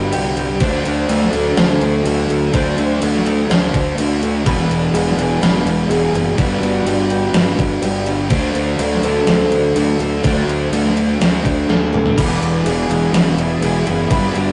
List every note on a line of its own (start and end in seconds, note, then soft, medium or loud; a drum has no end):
0.00 0.11 G1 loud
0.00 0.11 G2 loud
0.00 0.59 G2 loud
0.00 0.13 D3 medium
0.00 0.59 D3 medium
0.00 0.13 G3 medium
0.00 0.59 G3 medium
0.00 0.60 G3 loud
0.00 0.60 B3 medium
0.00 0.61 D4 medium
0.00 0.61 F#4 medium
0.00 0.26 B4 loud
0.00 0.61 B4 medium
0.12 0.59 C2 medium
0.12 0.60 G2 medium
0.12 0.37 D3 medium
0.12 0.35 G3 medium
0.12 0.35 G4 medium
0.12 crash loud
0.36 0.59 D3 medium
0.36 0.59 G3 medium
0.36 0.61 G4 medium
0.36 crash medium
0.59 0.84 D2 loud
0.59 4.45 D3 medium
0.59 1.09 D3 loud
0.59 4.44 F#3 medium
0.59 4.45 A3 medium
0.59 0.87 A3 loud
0.59 4.46 D4 medium
0.59 0.85 D4 loud
0.59 4.47 F#4 medium
0.59 1.57 C5 medium
0.59 4.47 C5 medium
0.59 kick loud
0.59 crash medium
0.85 1.08 D2 medium
0.85 1.10 A3 medium
0.85 1.11 D4 medium
0.85 crash medium
1.09 1.32 D2 loud
1.09 1.56 D3 medium
1.09 1.35 A3 medium
1.09 1.32 D4 medium
1.09 1.34 A4 medium
1.09 crash medium
1.22 snare soft
1.33 1.56 D2 loud
1.33 1.57 A3 medium
1.33 1.59 D4 medium
1.33 2.06 A4 medium
1.33 crash medium
1.57 1.80 D2 medium
1.57 2.04 D3 loud
1.57 1.83 A3 loud
1.57 1.81 D4 loud
1.57 2.06 C5 medium
1.57 snare loud
1.57 crash medium
1.81 2.04 D2 medium
1.81 2.05 A3 medium
1.81 2.07 D4 medium
1.81 crash medium
2.05 2.28 D2 loud
2.05 2.51 D3 medium
2.05 2.31 A3 medium
2.05 2.29 D4 medium
2.05 2.29 A4 medium
2.05 crash medium
2.29 2.52 D2 medium
2.29 2.53 A3 medium
2.29 2.55 D4 medium
2.29 2.54 A4 medium
2.29 crash medium
2.53 2.77 D2 medium
2.53 3.00 D3 medium
2.53 2.78 A3 loud
2.53 2.77 D4 loud
2.53 3.02 C5 loud
2.53 kick loud
2.53 crash medium
2.77 3.01 D2 loud
2.77 3.01 A3 medium
2.77 3.03 D4 medium
2.77 crash medium
3.01 3.48 D2 loud
3.01 3.48 D3 medium
3.01 3.27 A3 medium
3.01 3.25 D4 loud
3.01 3.25 A4 medium
3.01 crash medium
3.14 snare soft
3.26 3.50 A3 medium
3.26 3.52 D4 medium
3.26 3.49 A4 medium
3.26 crash medium
3.49 3.73 D2 medium
3.49 3.97 D3 loud
3.49 3.75 A3 loud
3.49 3.74 D4 loud
3.49 3.97 C5 medium
3.49 snare loud
3.49 crash medium
3.74 3.97 D2 medium
3.74 3.99 A3 medium
3.74 4.00 D4 medium
3.74 kick medium
3.74 crash medium
3.98 4.44 D2 medium
3.98 4.45 D3 medium
3.98 4.23 A3 medium
3.98 4.22 D4 medium
3.98 4.21 A4 medium
3.98 crash loud
4.22 4.46 A3 medium
4.22 4.49 D4 medium
4.22 4.46 A4 medium
4.22 crash medium
4.45 4.69 E1 loud
4.45 4.93 E2 medium
4.45 4.71 B2 loud
4.45 6.35 E3 medium
4.45 4.69 E3 loud
4.45 6.36 B3 medium
4.45 6.38 D4 medium
4.45 6.38 G#4 medium
4.45 5.41 B4 medium
4.45 6.38 B4 medium
4.45 kick loud
4.45 crash medium
4.69 4.93 E1 medium
4.69 4.94 B2 medium
4.69 4.95 E3 medium
4.69 crash medium
4.93 5.17 E1 loud
4.93 5.41 E2 medium
4.93 5.19 B2 medium
4.93 5.17 E3 medium
4.93 5.17 G#4 medium
4.93 crash loud
5.07 snare soft
5.17 5.40 E1 loud
5.17 5.43 B2 medium
5.17 5.44 E3 medium
5.17 5.41 G#4 medium
5.17 crash medium
5.40 5.64 E1 medium
5.40 5.89 E2 loud
5.40 5.67 B2 loud
5.40 5.90 B4 medium
5.40 snare loud
5.40 crash medium
5.45 5.65 E3 loud
5.65 5.88 E1 loud
5.65 5.90 B2 medium
5.65 5.92 E3 medium
5.65 crash medium
5.88 6.12 E1 loud
5.88 6.37 E2 medium
5.88 6.15 B2 medium
5.88 6.13 G#4 medium
5.88 crash medium
5.93 6.12 E3 medium
6.13 6.36 F#1 medium
6.13 6.38 B2 medium
6.13 6.37 E3 medium
6.13 6.38 G#4 medium
6.13 crash medium
6.36 6.60 G1 loud
6.36 6.85 G2 medium
6.36 6.63 D3 loud
6.36 8.29 G3 medium
6.36 8.30 B3 medium
6.36 8.30 D4 medium
6.36 8.31 F#4 medium
6.36 6.86 B4 medium
6.36 8.31 B4 medium
6.36 kick loud
6.36 crash medium
6.40 6.61 G3 loud
6.60 6.84 G1 loud
6.60 6.86 D3 medium
6.60 6.87 G3 medium
6.60 crash medium
6.84 7.31 G1 loud
6.84 7.33 G2 medium
6.84 7.12 D3 medium
6.84 7.10 G3 medium
6.84 7.09 G4 medium
6.84 crash medium
7.10 7.34 D3 medium
7.10 7.35 G3 medium
7.10 7.34 G4 medium
7.10 crash medium
7.34 7.57 G1 loud
7.34 7.82 G2 loud
7.34 7.59 D3 loud
7.34 7.57 G3 loud
7.34 7.82 B4 medium
7.34 snare loud
7.34 crash medium
7.58 7.81 G1 medium
7.58 7.83 D3 medium
7.58 7.84 G3 medium
7.58 kick medium
7.58 crash medium
7.82 8.28 G1 medium
7.82 8.30 G2 medium
7.82 8.08 D3 medium
7.82 8.06 G3 medium
7.82 8.05 G4 medium
7.82 crash medium
8.06 8.29 D3 medium
8.06 8.30 G3 medium
8.06 8.31 G4 medium
8.06 crash medium
8.29 8.53 D2 loud
8.29 12.16 D3 medium
8.29 8.78 D3 loud
8.29 12.16 F#3 medium
8.29 12.17 A3 medium
8.29 8.57 A3 loud
8.29 12.17 D4 medium
8.29 8.55 D4 loud
8.29 12.17 F#4 medium
8.29 9.28 C5 medium
8.29 12.18 C5 medium
8.29 kick loud
8.29 crash medium
8.55 8.78 D2 medium
8.55 8.79 A3 medium
8.55 8.81 D4 medium
8.55 crash medium
8.79 9.02 D2 loud
8.79 9.27 D3 medium
8.79 9.06 A3 medium
8.79 9.04 D4 medium
8.79 9.04 A4 medium
8.79 crash loud
8.92 snare soft
9.02 9.26 D2 medium
9.02 9.30 D4 medium
9.02 9.76 A4 loud
9.02 crash medium
9.06 9.28 A3 medium
9.27 9.50 D2 loud
9.27 9.74 D3 medium
9.27 9.53 A3 loud
9.27 9.52 D4 loud
9.27 9.76 C5 loud
9.27 snare loud
9.27 crash medium
9.52 9.75 D2 loud
9.52 9.76 A3 medium
9.52 9.78 D4 medium
9.52 crash medium
9.75 9.99 D2 loud
9.75 10.22 D3 medium
9.75 10.00 A3 loud
9.75 9.99 D4 loud
9.75 9.98 A4 medium
9.75 crash loud
9.99 10.22 D2 loud
9.99 10.24 A3 medium
9.99 10.25 D4 medium
9.99 10.23 A4 medium
9.99 crash medium
10.23 10.46 D2 loud
10.23 10.70 D3 medium
10.23 10.48 A3 loud
10.23 10.47 D4 loud
10.23 10.72 C5 medium
10.23 kick loud
10.23 crash medium
10.47 10.70 D2 medium
10.47 10.72 A3 medium
10.47 10.73 D4 medium
10.47 crash medium
10.72 11.18 D2 loud
10.72 11.19 D3 medium
10.72 10.97 A3 medium
10.72 10.96 D4 medium
10.72 10.96 A4 medium
10.72 crash medium
10.85 snare soft
10.96 11.21 A3 medium
10.96 11.23 D4 medium
10.96 11.21 A4 medium
10.96 crash medium
11.20 11.44 D2 loud
11.20 11.67 D3 loud
11.20 11.46 A3 loud
11.20 11.45 D4 loud
11.20 11.69 C5 medium
11.20 snare loud
11.20 crash medium
11.45 11.68 D2 medium
11.45 11.68 A3 medium
11.45 11.70 D4 medium
11.45 kick medium
11.45 crash medium
11.68 12.15 D#2 loud
11.68 12.15 D3 medium
11.68 11.93 A3 medium
11.68 11.92 D4 medium
11.68 11.92 A4 medium
11.68 snare medium
11.92 12.16 A3 medium
11.92 12.19 D4 medium
11.92 12.17 A4 medium
11.92 mid tom loud
12.06 floor tom loud
12.16 12.40 E1 medium
12.16 12.65 E2 medium
12.16 12.42 B2 loud
12.16 14.09 E3 medium
12.16 12.40 E3 loud
12.16 14.09 B3 medium
12.16 14.10 D4 medium
12.16 14.09 G#4 medium
12.16 14.11 G#4 medium
12.16 13.14 B4 medium
12.16 14.11 B4 medium
12.16 14.09 D5 medium
12.16 14.09 E5 medium
12.16 14.52 B5 medium
12.16 kick loud
12.16 crash loud
12.41 12.64 E1 medium
12.41 12.66 B2 medium
12.41 12.67 E3 medium
12.41 crash medium
12.66 12.88 E1 medium
12.66 13.13 E2 medium
12.66 12.91 B2 medium
12.66 12.88 E3 medium
12.66 12.89 G#4 medium
12.66 crash loud
12.90 13.12 E1 medium
12.90 13.14 B2 medium
12.90 13.15 E3 medium
12.90 13.14 G#4 medium
12.90 crash medium
13.12 13.36 E1 loud
13.12 13.60 E2 loud
13.12 13.39 B2 loud
13.12 13.37 E3 loud
13.12 13.62 B4 medium
13.12 snare loud
13.12 crash loud
13.37 13.60 E1 medium
13.37 13.61 B2 medium
13.37 13.63 E3 medium
13.37 crash medium
13.61 13.85 E1 medium
13.61 14.09 E2 medium
13.61 13.87 B2 medium
13.61 13.85 E3 medium
13.61 13.85 G#4 medium
13.61 crash medium
13.86 14.10 F#1 loud
13.86 14.10 B2 medium
13.86 14.09 E3 medium
13.86 14.10 G#4 medium
13.86 crash medium
14.09 14.34 G1 medium
14.09 14.52 G2 medium
14.09 14.36 D3 loud
14.09 14.52 G3 medium
14.09 14.34 G3 loud
14.09 14.52 B3 medium
14.09 14.52 D4 medium
14.09 14.52 F#4 medium
14.09 14.52 B4 loud
14.09 14.52 B4 medium
14.09 14.52 D5 medium
14.09 14.52 F#5 medium
14.09 kick loud
14.09 crash medium
14.35 14.52 G1 medium
14.35 14.52 D3 medium
14.35 14.52 G3 medium
14.35 crash medium